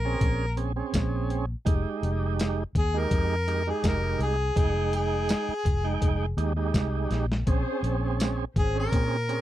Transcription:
Already playing: fingered electric bass A#1, harmonica A#4
0.05 tonewheel organ C4 C#4 G#4
0.21 fingered electric bass A#1, kick, closed hi-hat
0.57 tonewheel organ C4 C#4 G#4, closed hi-hat
0.76 tonewheel organ C4 C#4 G#4
0.94 fingered electric bass A#1, kick, snare, closed hi-hat, tambourine
1.30 closed hi-hat
1.65 fingered electric bass F1, tonewheel organ G#3 D#4 G4, kick, closed hi-hat
2.03 fingered electric bass F1, closed hi-hat
2.39 snare, closed hi-hat, tambourine
2.75 fingered electric bass D#2, harmonica G#4, kick, closed hi-hat
2.94 tonewheel organ G#3 D#4 G4
2.99 harmonica A#4
3.11 fingered electric bass F2, kick, closed hi-hat
3.47 tonewheel organ G#3 D#4 G4, closed hi-hat
3.67 tonewheel organ G#3 D#4 G4, harmonica G#4
3.84 fingered electric bass F1, harmonica A#4, kick, snare, closed hi-hat, tambourine
4.19 fingered electric bass C2, harmonica G#4, closed hi-hat
4.56 fingered electric bass F1, tonewheel organ G#3 D#4 G5, harmonica G#4, kick, closed hi-hat
4.93 harmonica G#4, closed hi-hat
5.29 snare, closed hi-hat, tambourine
5.49 muted fingered electric bass stroke
5.65 fingered electric bass F1, kick, closed hi-hat
5.84 tonewheel organ G#3 D#4 G5
6.02 fingered electric bass F1, kick, closed hi-hat
6.37 fingered electric bass D#2, tonewheel organ G#3 D#4 G4, closed hi-hat
6.56 tonewheel organ G#3 D#4 G4
6.74 fingered electric bass C2, kick, snare, closed hi-hat, tambourine
7.11 fingered electric bass A#1, snare, closed hi-hat
7.32 snare
7.47 fingered electric bass A#1, tonewheel organ C4 C#4 G#4, string section G#4 C5, kick, closed hi-hat
7.83 fingered electric bass A#1, closed hi-hat
8.20 snare, closed hi-hat, tambourine
8.56 fingered electric bass G#1, string section C#4 G#4 C5, harmonica G#4, kick, closed hi-hat
8.75 tonewheel organ C4 C#4 G#4
8.79 harmonica A#4
8.92 fingered electric bass A#2, kick, closed hi-hat
9.29 tonewheel organ C4 C#4 G#4, closed hi-hat

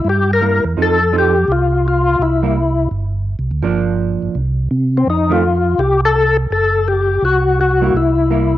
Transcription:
0.05 tonewheel organ G2
0.09 tonewheel organ G4
0.33 tonewheel organ A#4
0.41 hollow-body jazz guitar G3 A#3 E4
0.64 tonewheel organ E2
0.77 tonewheel organ F2, hollow-body jazz guitar F3 C4 D#4 A4
0.82 tonewheel organ A4
1.13 hollow-body jazz guitar F3 C4 D#4 A4
1.19 tonewheel organ G4
1.48 tonewheel organ C2 F4
1.88 tonewheel organ F4
2.19 tonewheel organ C2 E4
2.43 hollow-body jazz guitar G3 A#3 E4
2.91 tonewheel organ G1
3.39 tonewheel organ C2
3.51 tonewheel organ D2
3.63 tonewheel organ G1, hollow-body jazz guitar F3 A#3 D4
4.22 tonewheel organ G1
4.35 tonewheel organ C2
4.71 tonewheel organ C3
4.97 tonewheel organ C4
5.07 tonewheel organ F2 D#4
5.29 hollow-body jazz guitar D#3 A3 C4, tonewheel organ F4
5.78 tonewheel organ C2 G4
6.05 tonewheel organ A4
6.51 tonewheel organ F#1 A4
6.88 tonewheel organ G4
7.22 tonewheel organ C2 F#4
7.61 tonewheel organ F#4
7.81 hollow-body jazz guitar G3 A#3 E4
7.94 tonewheel organ C2 E4
8.30 hollow-body jazz guitar G3 A#3 E4

